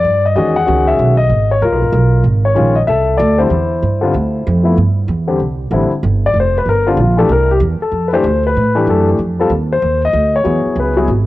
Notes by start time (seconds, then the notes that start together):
Already playing: D5
0.04 G2
0.25 D#5
0.35 E2 D#3 G#3 C#4 F#4 G#4 D#5
0.56 F#5
0.66 C#2 D#3 G#3 C#4 F#4
0.87 E5
0.99 B1
1.17 D#5
1.30 G#1
1.51 C#5
1.62 C#2 F4 A#4
1.72 B1
1.82 G#1
1.92 B1
2.24 G#1
2.45 C#5
2.55 A#1 D#3 G#3 C#4 F4
2.75 D#5
2.87 C2 A4 E5
3.17 D2 D5
3.38 D3 G3 C4 E4 C5
3.50 E2
3.83 G2
4.01 D3 G3 C4 F4
4.14 D2
4.47 F2
4.63 F3 A3 B3 E4
4.77 G2
5.08 E2
5.27 D3 G3 C4 G4
5.40 C2
5.71 A1 D3 G3 C4 E4
5.91 muted upright bass stroke
6.03 G1
6.26 D5
6.34 F1
6.40 C5
6.58 B4
6.66 G1 A#4
6.86 D3 G3 C4 D4 F4
6.97 A#1 F4
7.17 E3 A3 D4 G4 A4
7.29 C2 A#4
7.51 G4
7.60 E2
7.80 A4, muted upright bass stroke
7.92 F2
8.08 B4
8.13 E3 A3 D4 G4 C5
8.24 D2
8.47 B4
8.56 A2
8.75 E3 A3 D4 G4
8.87 F#2 A4
9.19 F2
9.39 G3 C4 F4 A4
9.50 D#2
9.72 C5
9.82 D#2
10.05 D#5
10.13 D2
10.36 C#5
10.44 E2 F#3 B3 E4 G#4
10.65 muted upright bass stroke
10.76 C#2 B4
10.97 F#3 B3 E4 G#4
11.08 G#1